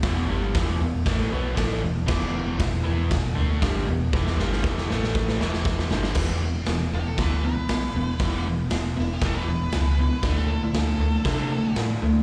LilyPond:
<<
  \new Staff \with { instrumentName = "Lead electric guitar" } { \time 4/4 \key e \minor \tempo 4 = 118 r1 | r1 | r1 | r4. g'16 a'16 b'8 b'4.~ |
b'8 r4 e'16 g'16 a'16 b'4.~ b'16~ | b'16 a'8 e'16 a'2 r4 | }
  \new Staff \with { instrumentName = "Overdriven electric guitar" } { \clef bass \time 4/4 \key e \minor <e, b, e>8 <g, d g>8 <e, b, e>8 <e, b,>8 <a, e a>8 <b, fis b>8 <a, e a>8 <e, b,>8 | <e, b, e>4 <e, b,>8 <e b e'>8 <e, b,>8 <d a d'>8 <g, d g>8 <e, b,>8 | <e, b, e>8 <g, d g>8 <e, b, e>8 <a, e a>4 <e, b, e>4 <g, d g>8 | <e, b, e>8 <e, b,>8 <e, b,>8 <e, b,>8 <e, b, e>8 <e, b,>8 <e, b,>8 <e, b,>8 |
<e, b, e>8 <e, b,>8 <e, b,>8 <e, b,>8 <e, b, e>8 <e, b,>8 <e, b,>8 <e, b,>8 | <d a d'>8 <d a>8 <d a>8 <d a>8 <d a d'>8 <d a>8 <d a>8 <d a>8 | }
  \new Staff \with { instrumentName = "Fingered electric bass" } { \clef bass \time 4/4 \key e \minor e,,8 g,,8 e,,8 e,,8 a,,8 b,,8 a,,8 e,,8 | e,,4 e,,8 e,8 e,,8 d,8 g,,8 e,,8 | e,,8 g,,8 e,,8 a,,4 e,,4 g,,8 | e,,4 e,,8 e,,8 d,4 b,,8 e,,8 |
e,,4 e,,8 e,,8 e,,8 e,,8 cis,4 | d,4 d,8 d,8 c4 a,8 d,8 | }
  \new DrumStaff \with { instrumentName = "Drums" } \drummode { \time 4/4 <hho bd sn>4 <hho bd sn>4 <hho bd sn>4 <hho bd sn>4 | <cymc bd sn>4 <hho bd sn>4 <hho bd sn>4 <hho bd sn>4 | <bd sn>16 sn16 sn16 sn16 <bd sn>16 sn16 sn16 sn16 <bd sn>16 sn16 sn16 sn16 <bd sn>16 sn16 sn16 sn16 | <cymc bd sn>4 <hho sn>4 <hho bd sn>4 <hho sn>4 |
<hho bd sn>4 <hho sn>4 <hho bd sn>4 <hho sn>4 | <hho bd sn>4 <hho sn>4 <hho bd sn>4 <hho sn>4 | }
>>